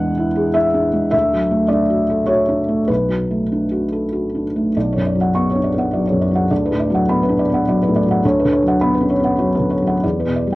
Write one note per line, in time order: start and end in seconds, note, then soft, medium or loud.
0.00 1.08 E2 medium
0.00 1.15 E3 soft
0.00 0.93 G#3 soft
0.00 0.28 D4 soft
0.00 0.55 F#5 medium
0.17 0.48 E4 soft
0.35 0.67 G#4 soft
0.54 0.86 E4 soft
0.54 1.09 E5 medium
0.74 1.05 D4 soft
0.93 1.13 G#3 soft
1.11 2.84 D2 medium
1.11 1.69 E5 medium
1.33 1.63 F#3 soft
1.51 1.82 A3 soft
1.68 2.01 D4 soft
1.68 2.27 D5 medium
1.90 2.21 F#4 soft
2.10 2.41 A4 soft
2.26 2.60 F#4 soft
2.26 2.88 C#5 medium
2.48 2.81 D4 soft
2.68 2.89 A3 soft
2.88 4.71 B1 soft
2.88 4.43 B4 medium
3.09 3.42 F#3 soft
3.31 3.63 A3 soft
3.52 3.84 D4 soft
3.72 4.04 F#4 soft
3.93 4.25 A4 soft
4.13 4.46 F#4 soft
4.35 4.67 D4 soft
4.56 4.76 A3 soft
4.77 6.47 B1 soft
4.77 5.00 D5 soft
4.93 5.27 F#2 soft
4.93 5.15 C#5 soft
5.06 5.29 D5 soft
5.15 5.46 F#3 soft
5.21 5.44 F#5 soft
5.35 5.66 B3 soft
5.35 5.58 C#6 soft
5.50 5.73 C#5 soft
5.55 5.86 D4 soft
5.64 5.87 D5 soft
5.74 6.04 B3 soft
5.78 6.02 F#5 soft
5.93 6.24 F#3 soft
5.93 6.16 D5 soft
6.07 6.30 C#5 soft
6.12 6.43 F#2 soft
6.21 6.45 D5 soft
6.31 6.50 F#3 soft
6.35 6.50 F#5 soft
6.50 8.19 D2 medium
6.50 6.74 D5 soft
6.65 6.88 B4 soft
6.71 7.01 A2 soft
6.80 7.03 D5 soft
6.90 7.20 F#3 soft
6.94 7.17 F#5 soft
7.08 7.39 B3 soft
7.08 7.32 B5 soft
7.23 7.46 B4 soft
7.29 7.59 D4 soft
7.39 7.61 D5 soft
7.49 7.79 B3 soft
7.54 7.76 F#5 soft
7.68 7.98 F#3 soft
7.68 7.90 D5 medium
7.83 8.04 B4 soft
7.88 8.17 A2 soft
7.96 8.18 D5 medium
8.06 8.24 F#3 soft
8.11 8.24 F#5 medium
8.25 10.00 D2 medium
8.25 8.47 C#5 medium
8.39 8.61 B4 soft
8.44 8.74 D3 soft
8.52 8.75 C#5 medium
8.62 8.92 F#3 soft
8.68 8.90 F#5 soft
8.81 9.12 B3 soft
8.81 9.04 B5 soft
8.94 9.18 B4 soft
9.01 9.32 C#4 soft
9.09 9.34 C#5 soft
9.20 9.52 B3 soft
9.24 9.49 F#5 soft
9.38 9.72 F#3 soft
9.38 9.64 C#5 soft
9.55 9.80 B4 soft
9.59 9.94 D3 soft
9.71 9.97 C#5 soft
9.82 10.04 F#3 soft
9.87 10.03 F#5 soft
10.03 10.55 E2 soft
10.03 10.30 D5 soft
10.20 10.46 B4 soft
10.25 10.55 B2 soft
10.36 10.55 D5 soft
10.47 10.55 G3 soft